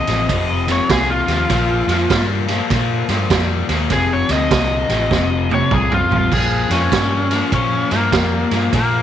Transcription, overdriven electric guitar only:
0.07 F2 C3
0.29 F2 C3
0.67 F2 C3
0.89 F2 D3
1.27 F2 C3
1.49 A#2 F3
1.88 A#2 F3
2.09 A#2 G3
2.48 A#2 F3
2.70 A#2 F3
3.09 A#2 F3
3.30 A#2 G3
3.69 A#2 F3
3.90 F2 C3
4.29 F2 C3
4.51 F2 D3
4.88 F2 C3
5.11 F2 C3
5.49 F2 C3
5.71 F2 D3
6.09 F2 C3
6.32 A#2 F3
6.70 A#2 F3
6.92 A#2 G3
7.31 A#2 F3
7.52 A#2 F3
7.90 A#2 F3
8.12 A#2 G3
8.51 A#2 F3
8.73 A#2 F3

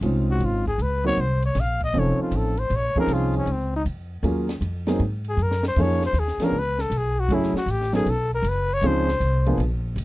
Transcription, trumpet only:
0.31 F#4
0.45 F4
0.68 G#4
0.82 B4
1.07 C#5
1.20 C5
1.45 C#5
1.60 F5
1.84 D#5
1.99 C#5
2.22 F4
2.37 A4
2.59 C5
2.76 C#5
3.00 A#4
3.14 F4
3.37 C#4
3.52 C4
3.76 D#4
5.29 G#4
5.43 A#4
5.68 C5
5.82 C#5
6.06 C5
6.19 G#4
6.43 A#4
6.59 B4
6.81 A4
6.97 G#4
7.20 F#4
7.34 E4
7.57 F#4
7.71 G4
7.95 G#4
8.10 A4
8.34 A#4
8.49 B4
8.74 C#5
8.86 C5

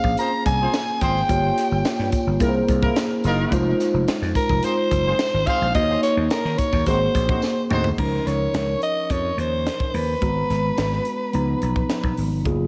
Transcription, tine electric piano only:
Already playing: A#3 C#4 G#4 C5
1.28 A#3 F4 G4 C#5
2.40 A#3 E4 G#4 A#4
2.49 C5
3.51 G#3 D#4 F4 C5
5.75 A#3 D#4 F#4 C5
5.83 C#5
6.86 A#3 F#4 G#4 C5
7.97 F3 C#4 D#4 A#4
10.21 G#3 B3 F#4 A#5
11.33 F3 B3 D#4 A#5
12.44 F#3 A#3 F4 G#4

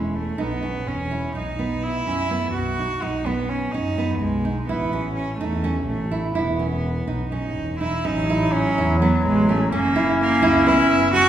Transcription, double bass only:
Already playing: E1
0.39 B1
0.88 E1
1.35 B1
2.07 F#2
2.56 B1
3.03 B1
3.74 F#2
4.22 B1
4.69 A1
5.41 E2
5.88 A1
6.37 E1
7.08 B1
7.56 E1
8.06 A1
8.78 E2
9.26 A1
9.73 F#1
10.43 C#2
10.90 F#1

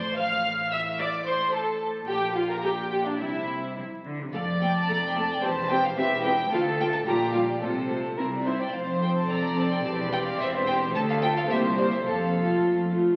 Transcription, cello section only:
Already playing: A2
2.09 A#2
3.20 C3
3.77 C3
4.06 D3
4.20 C3
4.33 F2
4.89 F2
5.44 E2
5.98 E2
6.52 D2
7.07 A#2
7.62 C3
8.19 C3
8.76 F2
9.31 F2
9.86 E2
10.40 E2
10.95 D2
11.50 C2
12.06 F2
12.63 F2

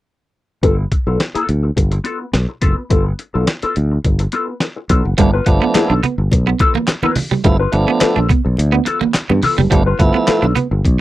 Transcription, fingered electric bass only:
0.63 G1
1.07 B1
1.35 muted fingered electric bass stroke
1.49 D2
1.77 G1
2.34 B1
2.62 F#1
2.91 G1
3.35 B1
3.63 muted fingered electric bass stroke
3.77 D2
4.05 G1
4.90 B1
5.05 F#1
5.18 G1
5.47 G1
5.75 muted fingered electric bass stroke
5.90 B1
6.18 G1
6.32 B1
7.45 G1
7.73 G1
8.03 muted fingered electric bass stroke
8.17 A#1
8.46 B1
8.58 D2
9.30 G2
9.59 F#1
9.72 G1
10.00 G1
10.28 muted fingered electric bass stroke
10.43 B1
10.71 G1
10.85 B1

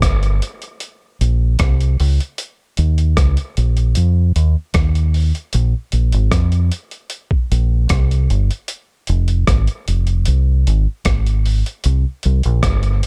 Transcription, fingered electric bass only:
0.03 G1
1.21 A#1
1.60 C2
2.00 C#2
2.78 D#2
3.17 C#2
3.58 A#1
3.97 F2
4.36 D#2
4.75 D#2
5.55 A#1
5.93 A#1
6.14 G#1
6.32 F2
7.52 A#1
7.91 C2
8.30 G1
9.09 F1
9.48 G#1
9.88 F1
10.28 C2
10.67 G#1
11.06 G#1
11.85 C2
12.25 C2
12.45 A#1
12.64 G1

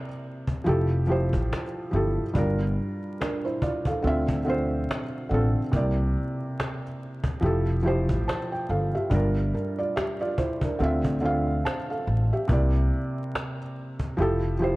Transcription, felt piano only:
Already playing: C3 A#3 E4 D5
0.64 F3 E4 G4
0.69 A4
1.07 F3 E4 G4
1.11 C5
1.91 F3 E4 G4
1.96 A4
2.34 G3 D4 F4
2.39 A#4
3.21 D4 A#4
3.45 E4 C5
3.63 F4 D5
3.87 A4 F5
4.03 D3 C4 F4
4.07 E5
4.45 D3 C4 F4
4.50 C5
5.29 D3 C4 F4
5.34 A4
5.72 C3 A#3 E4
5.76 D5
7.41 F3 E4 G4
7.46 A4
7.83 F3 E4 G4
7.87 C5
8.28 C5 A5
8.52 G5
8.70 A4 F5
8.95 G4 E5
9.10 G3 D4 F4
9.15 A#4
9.54 D4 A#4
9.79 F4 D5
9.96 G4 E5
10.21 F4 D5
10.38 E4 C5
10.63 D4 A#4
10.79 D3 C4 F4
10.83 E5
11.21 D3 C4 F4
11.25 F5
11.65 C5 A5
11.90 A4 F5
12.33 G4 E5
12.48 C3 A#3 E4
12.53 D5
14.17 F3 E4 G4
14.22 A4
14.59 F3 E4 G4
14.64 C5

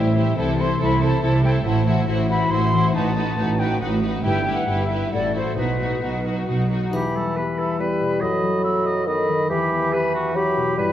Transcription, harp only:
Already playing: A2 E3 G3 E4 G4
0.17 E3
0.38 C3
0.59 A3
0.81 E4
1.03 A4
1.24 E4
1.44 A3
1.66 A2
1.87 E3
2.08 E4
2.30 F#4
2.51 E4
2.73 E3
2.95 A2
3.16 A3
3.38 D#4
3.60 F#4
3.82 D#4
4.03 A3
4.25 G2
4.47 G3
4.69 E4
4.91 G4
5.13 A2
5.35 E4 F#4
5.58 B2
5.81 B3
6.03 D#4
6.26 F#4
6.48 D#4
6.71 B3
6.93 E2
7.15 G3
7.36 B3
7.59 E4
7.80 B3
8.01 B2
8.22 F#2
8.44 F#3
8.64 B3
8.86 A4
9.07 B3
9.29 D#3
9.50 E2
9.72 B3
9.93 E4
10.14 G4
10.36 E4
10.56 B2
10.78 G2

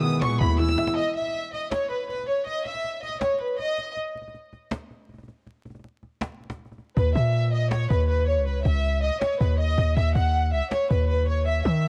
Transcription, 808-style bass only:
Already playing: D#3
0.22 A#2
0.41 D#2
6.97 D#2
7.15 A#2
7.90 D#2
8.37 C#2
8.65 C#2
9.41 D#2
9.78 D#2
9.97 D#2
10.15 D#2
10.53 C#2
10.90 D#2
11.65 D#3

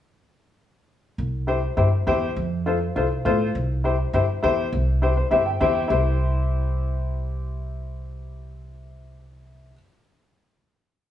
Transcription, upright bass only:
1.18 C2
1.77 G2
2.07 E2
2.36 F2
2.96 C2
3.25 A2
3.55 C2
4.13 G2
4.44 E2
4.73 C2
5.31 G2
5.61 E2
5.90 C2

